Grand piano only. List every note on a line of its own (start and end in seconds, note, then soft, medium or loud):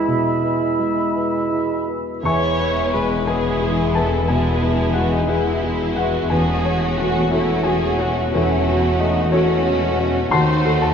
0.00 0.79 G#3 soft
0.00 1.51 E4 soft
0.00 0.43 B4 soft
0.08 0.65 B2 soft
0.43 1.01 B4 soft
0.79 1.37 G#3 soft
1.16 1.74 B4 soft
1.51 2.10 E4 soft
1.88 2.24 B4 soft
2.23 4.23 E2 medium
2.23 2.90 E5 soft
2.23 2.90 G#5 soft
2.23 2.90 C#6 medium
2.60 3.14 B4 soft
2.93 3.48 G#3 soft
2.93 3.25 B5 soft
3.27 3.81 B4 soft
3.27 3.91 E5 soft
3.27 3.90 G#5 medium
3.62 4.15 G#4 soft
3.94 4.28 B4 soft
3.94 4.26 A5 medium
4.28 4.83 B2 soft
4.28 4.61 B4 soft
4.28 4.92 E5 soft
4.28 4.92 G#5 soft
4.62 5.16 B4 soft
4.93 5.51 G#3 soft
4.93 5.10 F#5 soft
5.12 5.28 D#5 soft
5.28 5.62 G#4 soft
5.28 5.93 B4 soft
5.28 5.92 E5 medium
5.64 6.17 G#4 soft
5.96 6.31 B4 soft
5.96 6.28 F#5 medium
6.30 8.29 E2 soft
6.30 6.94 G#5 medium
6.65 7.18 C#5 soft
6.98 7.52 A3 soft
6.98 7.29 F#5 soft
7.31 7.63 A4 soft
7.31 7.63 C#5 soft
7.31 7.62 E5 medium
7.63 8.19 F#4 soft
7.63 7.96 G#5 medium
7.99 8.34 C#5 soft
7.99 8.30 F#5 soft
8.34 10.29 E2 soft
8.34 8.97 A4 soft
8.34 8.97 C#5 soft
8.34 8.97 E5 medium
8.68 9.21 F#4 soft
8.99 9.53 A3 soft
8.99 9.31 D#5 medium
9.32 9.65 F#4 soft
9.32 10.29 A4 soft
9.32 9.98 C#5 medium
9.66 10.19 F#4 soft
9.99 10.33 C#5 soft
10.31 10.94 D#2 medium
10.31 10.79 F#5 soft
10.31 10.80 A5 soft
10.31 10.79 C6 medium
10.65 10.94 A4 soft
10.82 10.94 A5 medium